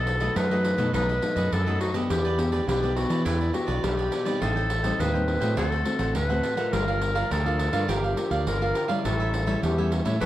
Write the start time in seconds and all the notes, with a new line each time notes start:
Already playing: B1 B2 A4
0.07 muted cavaquinho stroke, pandeiro
0.20 F#3 A3 D#4 A4 B4 D#5, pandeiro
0.36 F#2 D#4 A4 B4 D#5, pandeiro
0.51 F#3 A3 D#4 A4 B4 D#5, pandeiro
0.65 pandeiro
0.78 B2 F#3 A3 D#4 A4 B4 D#5, pandeiro
0.94 B1 B2 F#3 A3 D#4 A4 B4 D#5, pandeiro
1.09 A4 B4 D#5, pandeiro
1.22 F#3 A3 D#4, muted cavaquinho stroke, pandeiro
1.36 F#2 A4 B4 D#5, pandeiro
1.52 F#2 A4, pandeiro
1.66 F#3 A3 D#4 A4 B4 D#5, pandeiro
1.80 D#4 F#4 A4 B4 D#5, pandeiro
1.94 B3 D4 G4 A4 B4 D#5, pandeiro
2.09 E2 E3 E4 G4 B4 D5, pandeiro
2.24 G4 B4 D5, pandeiro
2.38 B3 D4 G4, muted cavaquinho stroke, pandeiro
2.52 G4 B4 D5, pandeiro
2.67 B1 B2 E4 G4 B4 D5, pandeiro
2.82 B3 D4 G4 B4 D5, pandeiro
2.96 F#4, pandeiro
3.09 E3 G4 B4 D5, pandeiro
3.25 E2 E3 E4 G4 B4 D5, pandeiro
3.40 G4 B4 D5, pandeiro
3.54 B3 D4 F#4 G4, muted cavaquinho stroke, pandeiro
3.67 B1 G4 B4 D5, pandeiro
3.83 B1 B2 B3 D4 G4, pandeiro
3.97 G4 B4 D5, pandeiro
4.12 E4 G4 B4 D5, pandeiro
4.25 G3 C4 D#4 G4 B4 D5, pandeiro
4.40 A1 A2 A4 C5 D#5 G5, pandeiro
4.56 C5 D#5 G5, pandeiro
4.70 muted cavaquinho stroke, pandeiro
4.83 G3 C4 D#4 C5 D#5 G5, pandeiro
4.98 D#2 A2 A4 B4 C5 D#5 G5, pandeiro
5.13 G3 C4 D#4 C5 D#5 G5, pandeiro
5.28 pandeiro
5.40 A2 A3 C4 F#4 C5 D#5 G5, pandeiro
5.57 D2 D3 D4 A4 C5 F#5, pandeiro
5.72 A4 C5 F#5, pandeiro
5.85 A3 C4 F#4, muted cavaquinho stroke, pandeiro
5.99 A1 A4 C5 F#5, pandeiro
6.15 D2 A2 B4, pandeiro
6.29 A3 C4 F#4 A4 C5 F#5, pandeiro
6.43 D4 A4 C5 F#5, pandeiro
6.57 D4 F4 A4 A#4 C5 F#5, pandeiro
6.73 G1 G3 G4 A#4 D5 F5, pandeiro
6.88 A#4 D5 F5, pandeiro
7.01 muted cavaquinho stroke, pandeiro
7.15 D4 F4 A#4 D5 F5, pandeiro
7.31 D2 D3 G4 A4 A#4 D5 F5, pandeiro
7.45 D4 F4 A#4 D5 F5, pandeiro
7.59 pandeiro
7.73 G2 D4 F4 A#4 D5 F5, pandeiro
7.88 G1 G3 D4 F4 G4 A#4 D5 F5, pandeiro
8.04 A#4 D5 F5, pandeiro
8.16 D4 F4 A#4, muted cavaquinho stroke, pandeiro
8.31 D2 A#4 D5 F5, pandeiro
8.46 G1 D3 A#4, pandeiro
8.61 D4 F4 A#4 D5 F5, pandeiro
8.75 G4 A#4 D5 F5, pandeiro
8.88 G3 C#4 E4 A#4 D5 F5, pandeiro
9.04 A1 A2 G4 A4 C#5 E5, pandeiro
9.19 A4 C#5 E5, pandeiro
9.33 muted cavaquinho stroke, pandeiro
9.46 G3 C#4 E4 A4 C#5 E5, pandeiro
9.62 E2 E3 G4 A4 C#5 E5, pandeiro
9.78 G3 C#4 E4 A4 C#5 E5, pandeiro
9.92 pandeiro
10.05 A2 G3 C#4 E4 A4 C#5 E5, pandeiro
10.20 A1 A2 G3 C#4 E4 G4 A4 B4 C#5 E5, pandeiro